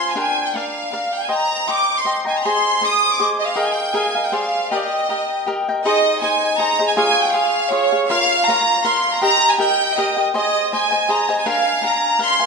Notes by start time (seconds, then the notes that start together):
Already playing: F4 C5 F5 G#5
0.10 G#5
0.16 D4 A#4 D5 G5 G#5
0.46 G5
0.54 D4 A#4 D5 F5
0.92 D4 A#4 D5 F5
1.13 G5
1.23 G#5
1.28 C5 D#5 G5 A#5
1.33 A#5
1.67 C5 D#5 G5 A#5 D6
1.97 C6
2.05 C5 D#5 G5 A#5
2.25 D#5 G5 G#5 A#5
2.36 A#5
2.45 G#4 C5 D#5 G#5 C6
2.81 G#4 C5 D#5 G#5 D#6
3.11 D6
3.20 G#4 C5 D#5 G#5
3.40 D#5
3.47 F5
3.56 G#4 A#4 D#5 F5 G5
3.63 G#5
3.71 G5
3.94 G#4 A#4 D#5 F5 G#5
4.15 A#4 D#5 F5
4.24 G5
4.32 G#4 C5 D5 F5
4.71 G4 A#4 D#5 G5
4.77 D5
4.84 D#5
5.09 G4 A#4 D#5 G5
5.46 G4 A#4 D#5 G5
5.69 A#4 D#5 G5
5.84 D#4 G#4 C5 D#5
6.20 D#4 G#4 C5 D#5 G#5
6.58 D#4 G#4 C5 D#5 A#5
6.79 G#4 C5 D#5
6.87 G#5
6.96 F4 G#4 C#5 F5 G#5
7.23 G5
7.33 F4 G#4 C#5 F5
7.70 F4 G#4 C#5 F5
7.92 G#4 C#5 F5
8.08 F4 A#4 C#5 F5
8.45 F4 A#4 C#5 F5 A#5
8.84 F4 A#4 C#5 F5 C6
9.13 A#5
9.22 G4 A#4 D#5 G5 A#5
9.51 G#5
9.58 G4 A#4 D#5 G5
9.97 G4 A#4 D#5 G5
10.17 A#4 D#5 G5
10.34 G#4 C5 D#5 G#5
10.72 G#4 C5 D#5 G#5
10.91 C5 D#5 G#5
11.09 G#4 C5 D#5 G#5 A#5
11.29 C5 D#5 G#5
11.38 G#5
11.46 D4 A#4 F5 G#5
11.82 D4 A#4 F5 G#5
11.86 A#5
12.19 D4 A#4 F5 G#5
12.24 C6
12.39 A#4 F5 G#5